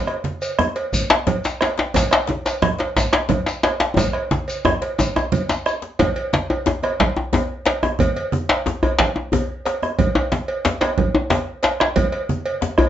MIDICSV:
0, 0, Header, 1, 5, 480
1, 0, Start_track
1, 0, Tempo, 337838
1, 2765, Time_signature, 12, 3, 24, 8
1, 9465, Tempo, 330943
1, 18501, End_track
2, 0, Start_track
2, 0, Title_t, "Bombo"
2, 106, Note_on_c, 9, 37, 69
2, 248, Note_off_c, 9, 37, 0
2, 833, Note_on_c, 9, 37, 98
2, 975, Note_off_c, 9, 37, 0
2, 1315, Note_on_c, 9, 43, 85
2, 1457, Note_off_c, 9, 43, 0
2, 1565, Note_on_c, 9, 37, 73
2, 1707, Note_off_c, 9, 37, 0
2, 1810, Note_on_c, 9, 37, 29
2, 1952, Note_off_c, 9, 37, 0
2, 2283, Note_on_c, 9, 37, 73
2, 2425, Note_off_c, 9, 37, 0
2, 2764, Note_on_c, 9, 43, 93
2, 2907, Note_off_c, 9, 43, 0
2, 3002, Note_on_c, 9, 37, 65
2, 3144, Note_off_c, 9, 37, 0
2, 3730, Note_on_c, 9, 37, 101
2, 3872, Note_off_c, 9, 37, 0
2, 4208, Note_on_c, 9, 43, 83
2, 4350, Note_off_c, 9, 43, 0
2, 4442, Note_on_c, 9, 37, 83
2, 4584, Note_off_c, 9, 37, 0
2, 4688, Note_on_c, 9, 37, 30
2, 4830, Note_off_c, 9, 37, 0
2, 5168, Note_on_c, 9, 37, 78
2, 5310, Note_off_c, 9, 37, 0
2, 5632, Note_on_c, 9, 37, 29
2, 5632, Note_on_c, 9, 43, 98
2, 5774, Note_off_c, 9, 37, 0
2, 5774, Note_off_c, 9, 43, 0
2, 5874, Note_on_c, 9, 37, 62
2, 6016, Note_off_c, 9, 37, 0
2, 6612, Note_on_c, 9, 37, 114
2, 6754, Note_off_c, 9, 37, 0
2, 6856, Note_on_c, 9, 37, 31
2, 6999, Note_off_c, 9, 37, 0
2, 7094, Note_on_c, 9, 43, 83
2, 7236, Note_off_c, 9, 43, 0
2, 7336, Note_on_c, 9, 37, 83
2, 7478, Note_off_c, 9, 37, 0
2, 8044, Note_on_c, 9, 37, 91
2, 8187, Note_off_c, 9, 37, 0
2, 8528, Note_on_c, 9, 43, 81
2, 8670, Note_off_c, 9, 43, 0
2, 9721, Note_on_c, 9, 37, 73
2, 9866, Note_off_c, 9, 37, 0
2, 9958, Note_on_c, 9, 43, 87
2, 10103, Note_off_c, 9, 43, 0
2, 11160, Note_on_c, 9, 37, 86
2, 11305, Note_off_c, 9, 37, 0
2, 11390, Note_on_c, 9, 43, 99
2, 11535, Note_off_c, 9, 43, 0
2, 12607, Note_on_c, 9, 37, 70
2, 12752, Note_off_c, 9, 37, 0
2, 12843, Note_on_c, 9, 43, 90
2, 12988, Note_off_c, 9, 43, 0
2, 14062, Note_on_c, 9, 37, 82
2, 14207, Note_off_c, 9, 37, 0
2, 14301, Note_on_c, 9, 43, 94
2, 14446, Note_off_c, 9, 43, 0
2, 15498, Note_on_c, 9, 37, 81
2, 15643, Note_off_c, 9, 37, 0
2, 15738, Note_on_c, 9, 43, 86
2, 15883, Note_off_c, 9, 43, 0
2, 16922, Note_on_c, 9, 37, 103
2, 17067, Note_off_c, 9, 37, 0
2, 17155, Note_on_c, 9, 43, 125
2, 17300, Note_off_c, 9, 43, 0
2, 17390, Note_on_c, 9, 37, 33
2, 17535, Note_off_c, 9, 37, 0
2, 18096, Note_on_c, 9, 37, 37
2, 18241, Note_off_c, 9, 37, 0
2, 18335, Note_on_c, 9, 37, 88
2, 18480, Note_off_c, 9, 37, 0
2, 18501, End_track
3, 0, Start_track
3, 0, Title_t, "Djembe"
3, 93, Note_on_c, 9, 63, 59
3, 235, Note_off_c, 9, 63, 0
3, 351, Note_on_c, 9, 62, 61
3, 493, Note_off_c, 9, 62, 0
3, 838, Note_on_c, 9, 63, 69
3, 838, Note_on_c, 9, 64, 69
3, 980, Note_off_c, 9, 63, 0
3, 980, Note_off_c, 9, 64, 0
3, 1078, Note_on_c, 9, 62, 53
3, 1220, Note_off_c, 9, 62, 0
3, 1564, Note_on_c, 9, 62, 104
3, 1568, Note_on_c, 9, 63, 57
3, 1706, Note_off_c, 9, 62, 0
3, 1711, Note_off_c, 9, 63, 0
3, 1801, Note_on_c, 9, 62, 70
3, 1801, Note_on_c, 9, 64, 70
3, 1809, Note_on_c, 9, 63, 70
3, 1943, Note_off_c, 9, 62, 0
3, 1943, Note_off_c, 9, 64, 0
3, 1951, Note_off_c, 9, 63, 0
3, 2061, Note_on_c, 9, 62, 72
3, 2203, Note_off_c, 9, 62, 0
3, 2293, Note_on_c, 9, 62, 21
3, 2293, Note_on_c, 9, 63, 59
3, 2302, Note_off_c, 9, 62, 0
3, 2302, Note_on_c, 9, 62, 75
3, 2436, Note_off_c, 9, 63, 0
3, 2444, Note_off_c, 9, 62, 0
3, 2524, Note_on_c, 9, 62, 60
3, 2543, Note_off_c, 9, 62, 0
3, 2543, Note_on_c, 9, 62, 75
3, 2685, Note_off_c, 9, 62, 0
3, 2759, Note_on_c, 9, 64, 70
3, 2785, Note_on_c, 9, 62, 79
3, 2901, Note_off_c, 9, 64, 0
3, 2927, Note_off_c, 9, 62, 0
3, 2996, Note_on_c, 9, 63, 52
3, 3021, Note_on_c, 9, 62, 104
3, 3138, Note_off_c, 9, 63, 0
3, 3163, Note_off_c, 9, 62, 0
3, 3231, Note_on_c, 9, 62, 65
3, 3259, Note_on_c, 9, 63, 76
3, 3373, Note_off_c, 9, 62, 0
3, 3402, Note_off_c, 9, 63, 0
3, 3494, Note_on_c, 9, 62, 66
3, 3637, Note_off_c, 9, 62, 0
3, 3723, Note_on_c, 9, 63, 68
3, 3723, Note_on_c, 9, 64, 71
3, 3726, Note_on_c, 9, 62, 74
3, 3866, Note_off_c, 9, 63, 0
3, 3866, Note_off_c, 9, 64, 0
3, 3868, Note_off_c, 9, 62, 0
3, 3958, Note_on_c, 9, 62, 52
3, 3978, Note_off_c, 9, 62, 0
3, 3978, Note_on_c, 9, 62, 66
3, 4120, Note_off_c, 9, 62, 0
3, 4214, Note_on_c, 9, 62, 80
3, 4356, Note_off_c, 9, 62, 0
3, 4439, Note_on_c, 9, 63, 59
3, 4447, Note_on_c, 9, 62, 102
3, 4581, Note_off_c, 9, 63, 0
3, 4589, Note_off_c, 9, 62, 0
3, 4672, Note_on_c, 9, 62, 74
3, 4672, Note_on_c, 9, 64, 85
3, 4699, Note_on_c, 9, 63, 71
3, 4814, Note_off_c, 9, 62, 0
3, 4814, Note_off_c, 9, 64, 0
3, 4841, Note_off_c, 9, 63, 0
3, 4922, Note_on_c, 9, 62, 69
3, 5064, Note_off_c, 9, 62, 0
3, 5161, Note_on_c, 9, 62, 20
3, 5161, Note_on_c, 9, 63, 73
3, 5163, Note_off_c, 9, 62, 0
3, 5163, Note_on_c, 9, 62, 76
3, 5303, Note_off_c, 9, 63, 0
3, 5305, Note_off_c, 9, 62, 0
3, 5399, Note_on_c, 9, 62, 77
3, 5404, Note_off_c, 9, 62, 0
3, 5404, Note_on_c, 9, 62, 70
3, 5546, Note_off_c, 9, 62, 0
3, 5645, Note_on_c, 9, 62, 23
3, 5645, Note_on_c, 9, 63, 113
3, 5645, Note_on_c, 9, 64, 78
3, 5787, Note_off_c, 9, 62, 0
3, 5787, Note_off_c, 9, 63, 0
3, 5787, Note_off_c, 9, 64, 0
3, 6124, Note_on_c, 9, 62, 73
3, 6126, Note_on_c, 9, 63, 97
3, 6267, Note_off_c, 9, 62, 0
3, 6268, Note_off_c, 9, 63, 0
3, 6358, Note_on_c, 9, 62, 25
3, 6500, Note_off_c, 9, 62, 0
3, 6604, Note_on_c, 9, 63, 103
3, 6608, Note_off_c, 9, 63, 0
3, 6608, Note_on_c, 9, 63, 72
3, 6608, Note_on_c, 9, 64, 67
3, 6750, Note_off_c, 9, 63, 0
3, 6750, Note_off_c, 9, 64, 0
3, 6849, Note_on_c, 9, 62, 61
3, 6991, Note_off_c, 9, 62, 0
3, 7087, Note_on_c, 9, 63, 101
3, 7229, Note_off_c, 9, 63, 0
3, 7324, Note_on_c, 9, 64, 42
3, 7334, Note_on_c, 9, 63, 99
3, 7466, Note_off_c, 9, 64, 0
3, 7476, Note_off_c, 9, 63, 0
3, 7563, Note_on_c, 9, 64, 45
3, 7705, Note_off_c, 9, 64, 0
3, 7797, Note_on_c, 9, 64, 51
3, 7806, Note_on_c, 9, 62, 84
3, 7940, Note_off_c, 9, 64, 0
3, 7948, Note_off_c, 9, 62, 0
3, 8039, Note_on_c, 9, 62, 50
3, 8181, Note_off_c, 9, 62, 0
3, 8272, Note_on_c, 9, 62, 63
3, 8414, Note_off_c, 9, 62, 0
3, 8518, Note_on_c, 9, 63, 120
3, 8520, Note_on_c, 9, 62, 23
3, 8520, Note_on_c, 9, 64, 81
3, 8660, Note_off_c, 9, 63, 0
3, 8662, Note_off_c, 9, 62, 0
3, 8662, Note_off_c, 9, 64, 0
3, 8992, Note_on_c, 9, 63, 71
3, 9000, Note_on_c, 9, 62, 82
3, 9134, Note_off_c, 9, 63, 0
3, 9143, Note_off_c, 9, 62, 0
3, 9235, Note_on_c, 9, 63, 80
3, 9377, Note_off_c, 9, 63, 0
3, 9463, Note_on_c, 9, 62, 75
3, 9463, Note_on_c, 9, 64, 79
3, 9473, Note_on_c, 9, 63, 105
3, 9608, Note_off_c, 9, 62, 0
3, 9608, Note_off_c, 9, 64, 0
3, 9618, Note_off_c, 9, 63, 0
3, 9703, Note_on_c, 9, 63, 56
3, 9848, Note_off_c, 9, 63, 0
3, 9955, Note_on_c, 9, 62, 86
3, 10100, Note_off_c, 9, 62, 0
3, 10195, Note_on_c, 9, 63, 89
3, 10340, Note_off_c, 9, 63, 0
3, 10433, Note_on_c, 9, 63, 84
3, 10433, Note_on_c, 9, 64, 84
3, 10447, Note_off_c, 9, 63, 0
3, 10447, Note_on_c, 9, 63, 105
3, 10578, Note_off_c, 9, 64, 0
3, 10592, Note_off_c, 9, 63, 0
3, 10906, Note_on_c, 9, 62, 76
3, 10919, Note_off_c, 9, 62, 0
3, 10919, Note_on_c, 9, 62, 89
3, 11064, Note_off_c, 9, 62, 0
3, 11157, Note_on_c, 9, 63, 84
3, 11160, Note_off_c, 9, 63, 0
3, 11160, Note_on_c, 9, 63, 82
3, 11305, Note_off_c, 9, 63, 0
3, 11405, Note_on_c, 9, 62, 29
3, 11405, Note_on_c, 9, 64, 95
3, 11550, Note_off_c, 9, 62, 0
3, 11550, Note_off_c, 9, 64, 0
3, 11887, Note_on_c, 9, 63, 86
3, 12032, Note_off_c, 9, 63, 0
3, 12121, Note_on_c, 9, 62, 94
3, 12266, Note_off_c, 9, 62, 0
3, 12362, Note_on_c, 9, 63, 76
3, 12371, Note_on_c, 9, 62, 74
3, 12371, Note_on_c, 9, 64, 76
3, 12507, Note_off_c, 9, 63, 0
3, 12516, Note_off_c, 9, 62, 0
3, 12516, Note_off_c, 9, 64, 0
3, 12606, Note_on_c, 9, 64, 82
3, 12614, Note_on_c, 9, 63, 60
3, 12751, Note_off_c, 9, 64, 0
3, 12759, Note_off_c, 9, 63, 0
3, 12835, Note_on_c, 9, 62, 114
3, 12980, Note_off_c, 9, 62, 0
3, 13085, Note_on_c, 9, 63, 83
3, 13230, Note_off_c, 9, 63, 0
3, 13320, Note_on_c, 9, 64, 70
3, 13338, Note_off_c, 9, 64, 0
3, 13338, Note_on_c, 9, 63, 91
3, 13338, Note_on_c, 9, 64, 85
3, 13483, Note_off_c, 9, 63, 0
3, 13483, Note_off_c, 9, 64, 0
3, 13818, Note_on_c, 9, 62, 76
3, 13963, Note_off_c, 9, 62, 0
3, 14054, Note_on_c, 9, 63, 79
3, 14199, Note_off_c, 9, 63, 0
3, 14288, Note_on_c, 9, 62, 27
3, 14288, Note_on_c, 9, 64, 84
3, 14433, Note_off_c, 9, 62, 0
3, 14433, Note_off_c, 9, 64, 0
3, 14528, Note_on_c, 9, 63, 127
3, 14673, Note_off_c, 9, 63, 0
3, 14767, Note_on_c, 9, 62, 68
3, 14776, Note_on_c, 9, 63, 79
3, 14912, Note_off_c, 9, 62, 0
3, 14921, Note_off_c, 9, 63, 0
3, 15247, Note_on_c, 9, 62, 88
3, 15257, Note_off_c, 9, 62, 0
3, 15257, Note_on_c, 9, 62, 82
3, 15257, Note_on_c, 9, 64, 86
3, 15402, Note_off_c, 9, 62, 0
3, 15402, Note_off_c, 9, 64, 0
3, 15485, Note_on_c, 9, 62, 76
3, 15502, Note_on_c, 9, 63, 69
3, 15630, Note_off_c, 9, 62, 0
3, 15647, Note_off_c, 9, 63, 0
3, 15968, Note_on_c, 9, 63, 102
3, 16113, Note_off_c, 9, 63, 0
3, 16197, Note_on_c, 9, 62, 81
3, 16198, Note_on_c, 9, 63, 89
3, 16198, Note_on_c, 9, 64, 87
3, 16342, Note_off_c, 9, 62, 0
3, 16343, Note_off_c, 9, 63, 0
3, 16343, Note_off_c, 9, 64, 0
3, 16672, Note_on_c, 9, 62, 77
3, 16684, Note_off_c, 9, 62, 0
3, 16684, Note_on_c, 9, 62, 86
3, 16829, Note_off_c, 9, 62, 0
3, 16933, Note_on_c, 9, 62, 91
3, 17078, Note_off_c, 9, 62, 0
3, 17162, Note_on_c, 9, 62, 27
3, 17162, Note_on_c, 9, 64, 83
3, 17307, Note_off_c, 9, 62, 0
3, 17307, Note_off_c, 9, 64, 0
3, 17634, Note_on_c, 9, 63, 84
3, 17779, Note_off_c, 9, 63, 0
3, 17871, Note_on_c, 9, 62, 26
3, 18016, Note_off_c, 9, 62, 0
3, 18108, Note_on_c, 9, 62, 74
3, 18108, Note_on_c, 9, 64, 84
3, 18253, Note_off_c, 9, 62, 0
3, 18253, Note_off_c, 9, 64, 0
3, 18344, Note_on_c, 9, 64, 106
3, 18350, Note_on_c, 9, 63, 70
3, 18489, Note_off_c, 9, 64, 0
3, 18495, Note_off_c, 9, 63, 0
3, 18501, End_track
4, 0, Start_track
4, 0, Title_t, "Shekere"
4, 593, Note_on_c, 9, 82, 44
4, 735, Note_off_c, 9, 82, 0
4, 1330, Note_on_c, 9, 82, 61
4, 1472, Note_off_c, 9, 82, 0
4, 2053, Note_on_c, 9, 82, 41
4, 2195, Note_off_c, 9, 82, 0
4, 2302, Note_on_c, 9, 82, 19
4, 2444, Note_off_c, 9, 82, 0
4, 2787, Note_on_c, 9, 82, 57
4, 2929, Note_off_c, 9, 82, 0
4, 3498, Note_on_c, 9, 82, 48
4, 3640, Note_off_c, 9, 82, 0
4, 4224, Note_on_c, 9, 82, 53
4, 4366, Note_off_c, 9, 82, 0
4, 4945, Note_on_c, 9, 82, 38
4, 5087, Note_off_c, 9, 82, 0
4, 5190, Note_on_c, 9, 82, 17
4, 5332, Note_off_c, 9, 82, 0
4, 5664, Note_on_c, 9, 82, 57
4, 5806, Note_off_c, 9, 82, 0
4, 6383, Note_on_c, 9, 82, 44
4, 6525, Note_off_c, 9, 82, 0
4, 7094, Note_on_c, 9, 82, 58
4, 7237, Note_off_c, 9, 82, 0
4, 7340, Note_on_c, 9, 82, 20
4, 7482, Note_off_c, 9, 82, 0
4, 7585, Note_on_c, 9, 82, 18
4, 7727, Note_off_c, 9, 82, 0
4, 7814, Note_on_c, 9, 82, 41
4, 7956, Note_off_c, 9, 82, 0
4, 8054, Note_on_c, 9, 82, 21
4, 8196, Note_off_c, 9, 82, 0
4, 18501, End_track
5, 0, Start_track
5, 0, Title_t, "Drums"
5, 101, Note_on_c, 9, 63, 22
5, 110, Note_on_c, 9, 56, 43
5, 243, Note_off_c, 9, 63, 0
5, 252, Note_off_c, 9, 56, 0
5, 343, Note_on_c, 9, 63, 63
5, 485, Note_off_c, 9, 63, 0
5, 594, Note_on_c, 9, 56, 47
5, 737, Note_off_c, 9, 56, 0
5, 838, Note_on_c, 9, 64, 77
5, 980, Note_off_c, 9, 64, 0
5, 1078, Note_on_c, 9, 56, 53
5, 1220, Note_off_c, 9, 56, 0
5, 1321, Note_on_c, 9, 56, 39
5, 1464, Note_off_c, 9, 56, 0
5, 1806, Note_on_c, 9, 64, 70
5, 1807, Note_on_c, 9, 56, 52
5, 1948, Note_off_c, 9, 64, 0
5, 1949, Note_off_c, 9, 56, 0
5, 2286, Note_on_c, 9, 56, 50
5, 2428, Note_off_c, 9, 56, 0
5, 2760, Note_on_c, 9, 64, 67
5, 2764, Note_on_c, 9, 56, 62
5, 2902, Note_off_c, 9, 64, 0
5, 2907, Note_off_c, 9, 56, 0
5, 3004, Note_on_c, 9, 56, 51
5, 3009, Note_on_c, 9, 63, 25
5, 3146, Note_off_c, 9, 56, 0
5, 3151, Note_off_c, 9, 63, 0
5, 3250, Note_on_c, 9, 63, 75
5, 3392, Note_off_c, 9, 63, 0
5, 3490, Note_on_c, 9, 56, 50
5, 3632, Note_off_c, 9, 56, 0
5, 3730, Note_on_c, 9, 64, 88
5, 3872, Note_off_c, 9, 64, 0
5, 3965, Note_on_c, 9, 56, 52
5, 4107, Note_off_c, 9, 56, 0
5, 4212, Note_on_c, 9, 56, 39
5, 4215, Note_on_c, 9, 63, 27
5, 4354, Note_off_c, 9, 56, 0
5, 4357, Note_off_c, 9, 63, 0
5, 4681, Note_on_c, 9, 63, 71
5, 4681, Note_on_c, 9, 64, 76
5, 4687, Note_on_c, 9, 56, 52
5, 4823, Note_off_c, 9, 63, 0
5, 4823, Note_off_c, 9, 64, 0
5, 4829, Note_off_c, 9, 56, 0
5, 5171, Note_on_c, 9, 56, 52
5, 5313, Note_off_c, 9, 56, 0
5, 5635, Note_on_c, 9, 64, 68
5, 5642, Note_on_c, 9, 56, 63
5, 5777, Note_off_c, 9, 64, 0
5, 5784, Note_off_c, 9, 56, 0
5, 5884, Note_on_c, 9, 56, 49
5, 6026, Note_off_c, 9, 56, 0
5, 6124, Note_on_c, 9, 63, 70
5, 6266, Note_off_c, 9, 63, 0
5, 6363, Note_on_c, 9, 56, 44
5, 6505, Note_off_c, 9, 56, 0
5, 6605, Note_on_c, 9, 64, 77
5, 6747, Note_off_c, 9, 64, 0
5, 6845, Note_on_c, 9, 56, 49
5, 6847, Note_on_c, 9, 63, 24
5, 6987, Note_off_c, 9, 56, 0
5, 6989, Note_off_c, 9, 63, 0
5, 7082, Note_on_c, 9, 56, 42
5, 7224, Note_off_c, 9, 56, 0
5, 7560, Note_on_c, 9, 63, 76
5, 7560, Note_on_c, 9, 64, 76
5, 7564, Note_on_c, 9, 56, 49
5, 7702, Note_off_c, 9, 63, 0
5, 7702, Note_off_c, 9, 64, 0
5, 7706, Note_off_c, 9, 56, 0
5, 7803, Note_on_c, 9, 63, 22
5, 7946, Note_off_c, 9, 63, 0
5, 8513, Note_on_c, 9, 56, 76
5, 8517, Note_on_c, 9, 64, 72
5, 8656, Note_off_c, 9, 56, 0
5, 8659, Note_off_c, 9, 64, 0
5, 8752, Note_on_c, 9, 56, 59
5, 8755, Note_on_c, 9, 63, 25
5, 8894, Note_off_c, 9, 56, 0
5, 8897, Note_off_c, 9, 63, 0
5, 8996, Note_on_c, 9, 63, 67
5, 9138, Note_off_c, 9, 63, 0
5, 9235, Note_on_c, 9, 56, 54
5, 9377, Note_off_c, 9, 56, 0
5, 9474, Note_on_c, 9, 63, 27
5, 9619, Note_off_c, 9, 63, 0
5, 9711, Note_on_c, 9, 63, 28
5, 9716, Note_on_c, 9, 56, 62
5, 9856, Note_off_c, 9, 63, 0
5, 9861, Note_off_c, 9, 56, 0
5, 9954, Note_on_c, 9, 63, 25
5, 9954, Note_on_c, 9, 64, 83
5, 9956, Note_on_c, 9, 56, 47
5, 10099, Note_off_c, 9, 63, 0
5, 10099, Note_off_c, 9, 64, 0
5, 10101, Note_off_c, 9, 56, 0
5, 10431, Note_on_c, 9, 63, 75
5, 10433, Note_on_c, 9, 56, 51
5, 10576, Note_off_c, 9, 63, 0
5, 10578, Note_off_c, 9, 56, 0
5, 10915, Note_on_c, 9, 56, 52
5, 11061, Note_off_c, 9, 56, 0
5, 11156, Note_on_c, 9, 63, 27
5, 11301, Note_off_c, 9, 63, 0
5, 11388, Note_on_c, 9, 64, 80
5, 11405, Note_on_c, 9, 56, 67
5, 11533, Note_off_c, 9, 64, 0
5, 11550, Note_off_c, 9, 56, 0
5, 11639, Note_on_c, 9, 63, 30
5, 11646, Note_on_c, 9, 56, 55
5, 11784, Note_off_c, 9, 63, 0
5, 11791, Note_off_c, 9, 56, 0
5, 11875, Note_on_c, 9, 63, 78
5, 12020, Note_off_c, 9, 63, 0
5, 12126, Note_on_c, 9, 56, 51
5, 12271, Note_off_c, 9, 56, 0
5, 12368, Note_on_c, 9, 63, 30
5, 12513, Note_off_c, 9, 63, 0
5, 12608, Note_on_c, 9, 56, 53
5, 12609, Note_on_c, 9, 63, 27
5, 12753, Note_off_c, 9, 56, 0
5, 12754, Note_off_c, 9, 63, 0
5, 12851, Note_on_c, 9, 56, 52
5, 12851, Note_on_c, 9, 63, 27
5, 12851, Note_on_c, 9, 64, 86
5, 12996, Note_off_c, 9, 56, 0
5, 12996, Note_off_c, 9, 63, 0
5, 12996, Note_off_c, 9, 64, 0
5, 13331, Note_on_c, 9, 56, 56
5, 13333, Note_on_c, 9, 63, 78
5, 13476, Note_off_c, 9, 56, 0
5, 13478, Note_off_c, 9, 63, 0
5, 13807, Note_on_c, 9, 56, 63
5, 13952, Note_off_c, 9, 56, 0
5, 14054, Note_on_c, 9, 63, 22
5, 14199, Note_off_c, 9, 63, 0
5, 14287, Note_on_c, 9, 56, 64
5, 14287, Note_on_c, 9, 64, 80
5, 14432, Note_off_c, 9, 56, 0
5, 14432, Note_off_c, 9, 64, 0
5, 14527, Note_on_c, 9, 56, 58
5, 14532, Note_on_c, 9, 63, 23
5, 14672, Note_off_c, 9, 56, 0
5, 14677, Note_off_c, 9, 63, 0
5, 14774, Note_on_c, 9, 63, 74
5, 14919, Note_off_c, 9, 63, 0
5, 15006, Note_on_c, 9, 56, 52
5, 15151, Note_off_c, 9, 56, 0
5, 15256, Note_on_c, 9, 63, 26
5, 15401, Note_off_c, 9, 63, 0
5, 15480, Note_on_c, 9, 56, 66
5, 15493, Note_on_c, 9, 63, 27
5, 15625, Note_off_c, 9, 56, 0
5, 15638, Note_off_c, 9, 63, 0
5, 15722, Note_on_c, 9, 63, 26
5, 15722, Note_on_c, 9, 64, 87
5, 15724, Note_on_c, 9, 56, 44
5, 15867, Note_off_c, 9, 63, 0
5, 15867, Note_off_c, 9, 64, 0
5, 15869, Note_off_c, 9, 56, 0
5, 16193, Note_on_c, 9, 56, 54
5, 16199, Note_on_c, 9, 63, 75
5, 16338, Note_off_c, 9, 56, 0
5, 16344, Note_off_c, 9, 63, 0
5, 16666, Note_on_c, 9, 56, 56
5, 16811, Note_off_c, 9, 56, 0
5, 16919, Note_on_c, 9, 63, 24
5, 17064, Note_off_c, 9, 63, 0
5, 17147, Note_on_c, 9, 56, 71
5, 17150, Note_on_c, 9, 63, 23
5, 17150, Note_on_c, 9, 64, 83
5, 17292, Note_off_c, 9, 56, 0
5, 17296, Note_off_c, 9, 63, 0
5, 17296, Note_off_c, 9, 64, 0
5, 17387, Note_on_c, 9, 56, 58
5, 17532, Note_off_c, 9, 56, 0
5, 17632, Note_on_c, 9, 63, 76
5, 17777, Note_off_c, 9, 63, 0
5, 17868, Note_on_c, 9, 56, 59
5, 17878, Note_on_c, 9, 63, 24
5, 18013, Note_off_c, 9, 56, 0
5, 18023, Note_off_c, 9, 63, 0
5, 18117, Note_on_c, 9, 63, 31
5, 18262, Note_off_c, 9, 63, 0
5, 18348, Note_on_c, 9, 56, 58
5, 18493, Note_off_c, 9, 56, 0
5, 18501, End_track
0, 0, End_of_file